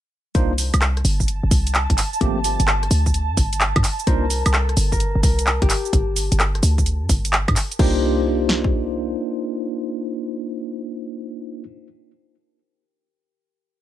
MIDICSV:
0, 0, Header, 1, 6, 480
1, 0, Start_track
1, 0, Tempo, 465116
1, 361, Time_signature, 4, 2, 24, 8
1, 14256, End_track
2, 0, Start_track
2, 0, Title_t, "Ambient pad"
2, 0, Program_c, 0, 92
2, 360, Note_on_c, 0, 81, 86
2, 6133, Note_off_c, 0, 81, 0
2, 14256, End_track
3, 0, Start_track
3, 0, Title_t, "Harp"
3, 0, Program_c, 1, 46
3, 4200, Note_on_c, 1, 70, 106
3, 4681, Note_on_c, 1, 69, 98
3, 4743, Note_off_c, 1, 70, 0
3, 5081, Note_on_c, 1, 70, 95
3, 5142, Note_off_c, 1, 69, 0
3, 5399, Note_off_c, 1, 70, 0
3, 5404, Note_on_c, 1, 70, 93
3, 5798, Note_on_c, 1, 67, 97
3, 7593, Note_off_c, 1, 70, 0
3, 8039, Note_off_c, 1, 67, 0
3, 8044, Note_on_c, 1, 67, 94
3, 12002, Note_off_c, 1, 67, 0
3, 14256, End_track
4, 0, Start_track
4, 0, Title_t, "Tine electric piano"
4, 0, Program_c, 2, 4
4, 360, Note_on_c, 2, 58, 87
4, 360, Note_on_c, 2, 62, 78
4, 360, Note_on_c, 2, 63, 77
4, 360, Note_on_c, 2, 65, 77
4, 360, Note_on_c, 2, 72, 91
4, 537, Note_off_c, 2, 58, 0
4, 537, Note_off_c, 2, 62, 0
4, 537, Note_off_c, 2, 63, 0
4, 537, Note_off_c, 2, 65, 0
4, 537, Note_off_c, 2, 72, 0
4, 2280, Note_on_c, 2, 53, 80
4, 2280, Note_on_c, 2, 57, 75
4, 2280, Note_on_c, 2, 58, 75
4, 2280, Note_on_c, 2, 67, 90
4, 2281, Note_on_c, 2, 60, 72
4, 2456, Note_off_c, 2, 67, 0
4, 2457, Note_off_c, 2, 53, 0
4, 2457, Note_off_c, 2, 57, 0
4, 2457, Note_off_c, 2, 58, 0
4, 2457, Note_off_c, 2, 60, 0
4, 4201, Note_on_c, 2, 58, 89
4, 4201, Note_on_c, 2, 62, 81
4, 4201, Note_on_c, 2, 72, 97
4, 4202, Note_on_c, 2, 63, 77
4, 4202, Note_on_c, 2, 65, 80
4, 4377, Note_off_c, 2, 58, 0
4, 4377, Note_off_c, 2, 62, 0
4, 4377, Note_off_c, 2, 63, 0
4, 4377, Note_off_c, 2, 65, 0
4, 4377, Note_off_c, 2, 72, 0
4, 8043, Note_on_c, 2, 58, 86
4, 8044, Note_on_c, 2, 62, 80
4, 8044, Note_on_c, 2, 63, 79
4, 8044, Note_on_c, 2, 65, 81
4, 8044, Note_on_c, 2, 72, 96
4, 12002, Note_off_c, 2, 58, 0
4, 12002, Note_off_c, 2, 62, 0
4, 12002, Note_off_c, 2, 65, 0
4, 12002, Note_off_c, 2, 72, 0
4, 12003, Note_off_c, 2, 63, 0
4, 14256, End_track
5, 0, Start_track
5, 0, Title_t, "808-style bass"
5, 0, Program_c, 3, 38
5, 360, Note_on_c, 3, 36, 96
5, 732, Note_off_c, 3, 36, 0
5, 760, Note_on_c, 3, 36, 88
5, 1067, Note_off_c, 3, 36, 0
5, 1080, Note_on_c, 3, 31, 111
5, 1452, Note_off_c, 3, 31, 0
5, 1480, Note_on_c, 3, 31, 91
5, 1552, Note_off_c, 3, 31, 0
5, 1560, Note_on_c, 3, 36, 97
5, 1932, Note_off_c, 3, 36, 0
5, 1960, Note_on_c, 3, 31, 77
5, 2032, Note_off_c, 3, 31, 0
5, 2280, Note_on_c, 3, 31, 101
5, 2652, Note_off_c, 3, 31, 0
5, 2679, Note_on_c, 3, 31, 84
5, 2987, Note_off_c, 3, 31, 0
5, 3000, Note_on_c, 3, 38, 108
5, 3400, Note_on_c, 3, 43, 89
5, 3416, Note_off_c, 3, 38, 0
5, 3472, Note_off_c, 3, 43, 0
5, 3481, Note_on_c, 3, 31, 99
5, 3852, Note_off_c, 3, 31, 0
5, 3880, Note_on_c, 3, 43, 80
5, 3952, Note_off_c, 3, 43, 0
5, 4201, Note_on_c, 3, 36, 103
5, 4572, Note_off_c, 3, 36, 0
5, 4602, Note_on_c, 3, 36, 84
5, 4908, Note_off_c, 3, 36, 0
5, 4921, Note_on_c, 3, 31, 106
5, 5292, Note_off_c, 3, 31, 0
5, 5319, Note_on_c, 3, 31, 90
5, 5392, Note_off_c, 3, 31, 0
5, 5400, Note_on_c, 3, 36, 98
5, 5772, Note_off_c, 3, 36, 0
5, 5799, Note_on_c, 3, 31, 81
5, 5872, Note_off_c, 3, 31, 0
5, 6120, Note_on_c, 3, 31, 101
5, 6492, Note_off_c, 3, 31, 0
5, 6520, Note_on_c, 3, 31, 87
5, 6827, Note_off_c, 3, 31, 0
5, 6840, Note_on_c, 3, 38, 105
5, 7238, Note_on_c, 3, 43, 90
5, 7254, Note_off_c, 3, 38, 0
5, 7311, Note_off_c, 3, 43, 0
5, 7321, Note_on_c, 3, 31, 98
5, 7692, Note_off_c, 3, 31, 0
5, 7719, Note_on_c, 3, 43, 80
5, 7792, Note_off_c, 3, 43, 0
5, 8041, Note_on_c, 3, 36, 97
5, 9440, Note_off_c, 3, 36, 0
5, 14256, End_track
6, 0, Start_track
6, 0, Title_t, "Drums"
6, 360, Note_on_c, 9, 36, 124
6, 361, Note_on_c, 9, 42, 64
6, 361, Note_on_c, 9, 82, 30
6, 464, Note_off_c, 9, 36, 0
6, 464, Note_off_c, 9, 42, 0
6, 464, Note_off_c, 9, 82, 0
6, 601, Note_on_c, 9, 46, 110
6, 601, Note_on_c, 9, 82, 70
6, 704, Note_off_c, 9, 46, 0
6, 704, Note_off_c, 9, 82, 0
6, 760, Note_on_c, 9, 42, 65
6, 760, Note_on_c, 9, 76, 57
6, 760, Note_on_c, 9, 82, 38
6, 841, Note_off_c, 9, 82, 0
6, 841, Note_on_c, 9, 37, 75
6, 841, Note_on_c, 9, 39, 119
6, 841, Note_on_c, 9, 82, 31
6, 864, Note_off_c, 9, 42, 0
6, 864, Note_off_c, 9, 76, 0
6, 945, Note_off_c, 9, 37, 0
6, 945, Note_off_c, 9, 39, 0
6, 945, Note_off_c, 9, 82, 0
6, 1001, Note_on_c, 9, 37, 34
6, 1001, Note_on_c, 9, 42, 36
6, 1081, Note_on_c, 9, 46, 110
6, 1081, Note_on_c, 9, 82, 69
6, 1104, Note_off_c, 9, 37, 0
6, 1104, Note_off_c, 9, 42, 0
6, 1185, Note_off_c, 9, 46, 0
6, 1185, Note_off_c, 9, 82, 0
6, 1239, Note_on_c, 9, 36, 61
6, 1241, Note_on_c, 9, 82, 38
6, 1322, Note_off_c, 9, 82, 0
6, 1322, Note_on_c, 9, 42, 64
6, 1322, Note_on_c, 9, 82, 29
6, 1343, Note_off_c, 9, 36, 0
6, 1425, Note_off_c, 9, 42, 0
6, 1425, Note_off_c, 9, 82, 0
6, 1560, Note_on_c, 9, 36, 108
6, 1561, Note_on_c, 9, 46, 112
6, 1561, Note_on_c, 9, 82, 68
6, 1663, Note_off_c, 9, 36, 0
6, 1665, Note_off_c, 9, 46, 0
6, 1665, Note_off_c, 9, 82, 0
6, 1721, Note_on_c, 9, 42, 63
6, 1721, Note_on_c, 9, 82, 42
6, 1802, Note_off_c, 9, 82, 0
6, 1802, Note_on_c, 9, 39, 119
6, 1802, Note_on_c, 9, 82, 30
6, 1824, Note_off_c, 9, 42, 0
6, 1905, Note_off_c, 9, 39, 0
6, 1905, Note_off_c, 9, 82, 0
6, 1959, Note_on_c, 9, 36, 104
6, 1961, Note_on_c, 9, 42, 53
6, 2041, Note_on_c, 9, 39, 63
6, 2041, Note_on_c, 9, 46, 108
6, 2041, Note_on_c, 9, 82, 69
6, 2063, Note_off_c, 9, 36, 0
6, 2064, Note_off_c, 9, 42, 0
6, 2144, Note_off_c, 9, 39, 0
6, 2144, Note_off_c, 9, 46, 0
6, 2144, Note_off_c, 9, 82, 0
6, 2200, Note_on_c, 9, 82, 40
6, 2281, Note_on_c, 9, 36, 127
6, 2282, Note_off_c, 9, 82, 0
6, 2282, Note_on_c, 9, 42, 63
6, 2282, Note_on_c, 9, 82, 29
6, 2384, Note_off_c, 9, 36, 0
6, 2385, Note_off_c, 9, 42, 0
6, 2385, Note_off_c, 9, 82, 0
6, 2522, Note_on_c, 9, 46, 111
6, 2522, Note_on_c, 9, 82, 71
6, 2625, Note_off_c, 9, 46, 0
6, 2625, Note_off_c, 9, 82, 0
6, 2681, Note_on_c, 9, 42, 60
6, 2681, Note_on_c, 9, 82, 41
6, 2761, Note_off_c, 9, 82, 0
6, 2761, Note_on_c, 9, 37, 76
6, 2761, Note_on_c, 9, 39, 127
6, 2761, Note_on_c, 9, 82, 31
6, 2784, Note_off_c, 9, 42, 0
6, 2864, Note_off_c, 9, 37, 0
6, 2864, Note_off_c, 9, 39, 0
6, 2864, Note_off_c, 9, 82, 0
6, 2920, Note_on_c, 9, 37, 32
6, 2920, Note_on_c, 9, 42, 36
6, 3001, Note_on_c, 9, 46, 104
6, 3001, Note_on_c, 9, 82, 70
6, 3023, Note_off_c, 9, 37, 0
6, 3023, Note_off_c, 9, 42, 0
6, 3105, Note_off_c, 9, 46, 0
6, 3105, Note_off_c, 9, 82, 0
6, 3160, Note_on_c, 9, 36, 66
6, 3161, Note_on_c, 9, 82, 41
6, 3242, Note_off_c, 9, 82, 0
6, 3242, Note_on_c, 9, 42, 65
6, 3242, Note_on_c, 9, 82, 30
6, 3263, Note_off_c, 9, 36, 0
6, 3345, Note_off_c, 9, 42, 0
6, 3345, Note_off_c, 9, 82, 0
6, 3481, Note_on_c, 9, 36, 108
6, 3481, Note_on_c, 9, 46, 104
6, 3481, Note_on_c, 9, 82, 69
6, 3584, Note_off_c, 9, 36, 0
6, 3585, Note_off_c, 9, 46, 0
6, 3585, Note_off_c, 9, 82, 0
6, 3640, Note_on_c, 9, 42, 66
6, 3640, Note_on_c, 9, 82, 40
6, 3721, Note_off_c, 9, 82, 0
6, 3721, Note_on_c, 9, 39, 124
6, 3721, Note_on_c, 9, 82, 29
6, 3743, Note_off_c, 9, 42, 0
6, 3824, Note_off_c, 9, 39, 0
6, 3824, Note_off_c, 9, 82, 0
6, 3879, Note_on_c, 9, 36, 111
6, 3880, Note_on_c, 9, 42, 53
6, 3880, Note_on_c, 9, 76, 76
6, 3962, Note_on_c, 9, 39, 65
6, 3962, Note_on_c, 9, 46, 103
6, 3962, Note_on_c, 9, 82, 70
6, 3983, Note_off_c, 9, 36, 0
6, 3983, Note_off_c, 9, 42, 0
6, 3983, Note_off_c, 9, 76, 0
6, 4065, Note_off_c, 9, 39, 0
6, 4065, Note_off_c, 9, 46, 0
6, 4065, Note_off_c, 9, 82, 0
6, 4120, Note_on_c, 9, 82, 41
6, 4201, Note_off_c, 9, 82, 0
6, 4201, Note_on_c, 9, 36, 127
6, 4201, Note_on_c, 9, 42, 64
6, 4201, Note_on_c, 9, 82, 31
6, 4304, Note_off_c, 9, 36, 0
6, 4304, Note_off_c, 9, 42, 0
6, 4304, Note_off_c, 9, 82, 0
6, 4441, Note_on_c, 9, 46, 104
6, 4441, Note_on_c, 9, 82, 73
6, 4544, Note_off_c, 9, 46, 0
6, 4544, Note_off_c, 9, 82, 0
6, 4601, Note_on_c, 9, 42, 65
6, 4601, Note_on_c, 9, 76, 62
6, 4601, Note_on_c, 9, 82, 41
6, 4681, Note_off_c, 9, 82, 0
6, 4681, Note_on_c, 9, 37, 75
6, 4681, Note_on_c, 9, 39, 127
6, 4681, Note_on_c, 9, 82, 31
6, 4704, Note_off_c, 9, 42, 0
6, 4704, Note_off_c, 9, 76, 0
6, 4784, Note_off_c, 9, 37, 0
6, 4784, Note_off_c, 9, 39, 0
6, 4784, Note_off_c, 9, 82, 0
6, 4841, Note_on_c, 9, 37, 33
6, 4841, Note_on_c, 9, 42, 36
6, 4921, Note_on_c, 9, 46, 108
6, 4921, Note_on_c, 9, 82, 74
6, 4944, Note_off_c, 9, 37, 0
6, 4944, Note_off_c, 9, 42, 0
6, 5024, Note_off_c, 9, 46, 0
6, 5024, Note_off_c, 9, 82, 0
6, 5079, Note_on_c, 9, 36, 67
6, 5081, Note_on_c, 9, 82, 40
6, 5162, Note_off_c, 9, 82, 0
6, 5162, Note_on_c, 9, 42, 65
6, 5162, Note_on_c, 9, 82, 32
6, 5182, Note_off_c, 9, 36, 0
6, 5265, Note_off_c, 9, 42, 0
6, 5265, Note_off_c, 9, 82, 0
6, 5399, Note_on_c, 9, 36, 109
6, 5401, Note_on_c, 9, 46, 106
6, 5401, Note_on_c, 9, 82, 69
6, 5503, Note_off_c, 9, 36, 0
6, 5504, Note_off_c, 9, 46, 0
6, 5504, Note_off_c, 9, 82, 0
6, 5560, Note_on_c, 9, 42, 64
6, 5560, Note_on_c, 9, 82, 40
6, 5641, Note_off_c, 9, 82, 0
6, 5641, Note_on_c, 9, 39, 127
6, 5641, Note_on_c, 9, 82, 31
6, 5663, Note_off_c, 9, 42, 0
6, 5744, Note_off_c, 9, 39, 0
6, 5744, Note_off_c, 9, 82, 0
6, 5799, Note_on_c, 9, 36, 120
6, 5799, Note_on_c, 9, 42, 51
6, 5879, Note_on_c, 9, 39, 65
6, 5879, Note_on_c, 9, 46, 108
6, 5879, Note_on_c, 9, 82, 75
6, 5902, Note_off_c, 9, 36, 0
6, 5902, Note_off_c, 9, 42, 0
6, 5983, Note_off_c, 9, 39, 0
6, 5983, Note_off_c, 9, 46, 0
6, 5983, Note_off_c, 9, 82, 0
6, 6040, Note_on_c, 9, 82, 42
6, 6119, Note_on_c, 9, 36, 125
6, 6122, Note_off_c, 9, 82, 0
6, 6122, Note_on_c, 9, 42, 67
6, 6122, Note_on_c, 9, 82, 34
6, 6223, Note_off_c, 9, 36, 0
6, 6225, Note_off_c, 9, 42, 0
6, 6225, Note_off_c, 9, 82, 0
6, 6361, Note_on_c, 9, 46, 101
6, 6361, Note_on_c, 9, 82, 78
6, 6464, Note_off_c, 9, 46, 0
6, 6464, Note_off_c, 9, 82, 0
6, 6520, Note_on_c, 9, 42, 66
6, 6520, Note_on_c, 9, 82, 42
6, 6601, Note_off_c, 9, 82, 0
6, 6601, Note_on_c, 9, 37, 69
6, 6601, Note_on_c, 9, 39, 127
6, 6601, Note_on_c, 9, 82, 34
6, 6623, Note_off_c, 9, 42, 0
6, 6704, Note_off_c, 9, 37, 0
6, 6704, Note_off_c, 9, 39, 0
6, 6704, Note_off_c, 9, 82, 0
6, 6760, Note_on_c, 9, 37, 32
6, 6760, Note_on_c, 9, 42, 35
6, 6841, Note_on_c, 9, 46, 99
6, 6841, Note_on_c, 9, 82, 77
6, 6864, Note_off_c, 9, 37, 0
6, 6864, Note_off_c, 9, 42, 0
6, 6944, Note_off_c, 9, 46, 0
6, 6944, Note_off_c, 9, 82, 0
6, 6999, Note_on_c, 9, 36, 66
6, 7000, Note_on_c, 9, 82, 41
6, 7081, Note_off_c, 9, 82, 0
6, 7081, Note_on_c, 9, 42, 61
6, 7081, Note_on_c, 9, 82, 32
6, 7102, Note_off_c, 9, 36, 0
6, 7184, Note_off_c, 9, 42, 0
6, 7184, Note_off_c, 9, 82, 0
6, 7321, Note_on_c, 9, 36, 111
6, 7321, Note_on_c, 9, 46, 101
6, 7321, Note_on_c, 9, 82, 74
6, 7424, Note_off_c, 9, 36, 0
6, 7424, Note_off_c, 9, 46, 0
6, 7424, Note_off_c, 9, 82, 0
6, 7481, Note_on_c, 9, 42, 62
6, 7481, Note_on_c, 9, 82, 43
6, 7563, Note_off_c, 9, 82, 0
6, 7563, Note_on_c, 9, 39, 126
6, 7563, Note_on_c, 9, 82, 32
6, 7584, Note_off_c, 9, 42, 0
6, 7666, Note_off_c, 9, 39, 0
6, 7666, Note_off_c, 9, 82, 0
6, 7720, Note_on_c, 9, 36, 113
6, 7722, Note_on_c, 9, 42, 51
6, 7722, Note_on_c, 9, 76, 83
6, 7804, Note_on_c, 9, 39, 64
6, 7804, Note_on_c, 9, 46, 100
6, 7804, Note_on_c, 9, 82, 76
6, 7824, Note_off_c, 9, 36, 0
6, 7826, Note_off_c, 9, 42, 0
6, 7826, Note_off_c, 9, 76, 0
6, 7907, Note_off_c, 9, 39, 0
6, 7907, Note_off_c, 9, 46, 0
6, 7907, Note_off_c, 9, 82, 0
6, 7962, Note_on_c, 9, 42, 35
6, 7962, Note_on_c, 9, 82, 45
6, 8042, Note_on_c, 9, 36, 118
6, 8043, Note_on_c, 9, 49, 88
6, 8065, Note_off_c, 9, 42, 0
6, 8065, Note_off_c, 9, 82, 0
6, 8145, Note_off_c, 9, 36, 0
6, 8146, Note_off_c, 9, 49, 0
6, 8762, Note_on_c, 9, 38, 64
6, 8865, Note_off_c, 9, 38, 0
6, 8921, Note_on_c, 9, 36, 81
6, 9024, Note_off_c, 9, 36, 0
6, 14256, End_track
0, 0, End_of_file